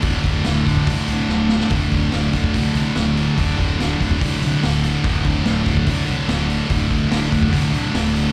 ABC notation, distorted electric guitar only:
X:1
M:4/4
L:1/8
Q:1/4=144
K:Cmix
V:1 name="Distorted electric guitar" clef=bass
[D,,A,,D,] [A,,D,] [D,,A,,D,] [D,,A,,D,] [D,,A,,D,] [D,,A,,D,] [D,,A,,D,] [A,,D,] | [D,,A,,D,] [A,,D,] [D,,A,,D,] [D,,A,,D,] [D,,A,,D,] [D,,A,,D,] [D,,A,,D,] [A,,D,] | [D,,A,,D,] [A,,D,] [D,,A,,D,] [D,,A,,D,] [D,,A,,D,] [D,,A,,D,] [D,,A,,D,] [A,,D,] | [D,,A,,D,] [A,,D,] [D,,A,,D,] [D,,A,,D,] [D,,A,,D,] [D,,A,,D,] [D,,A,,D,] [A,,D,] |
[D,,A,,D,] [A,,D,] [D,,A,,D,] [D,,A,,D,] [D,,A,,D,] [D,,A,,D,] [D,,A,,D,] [A,,D,] |]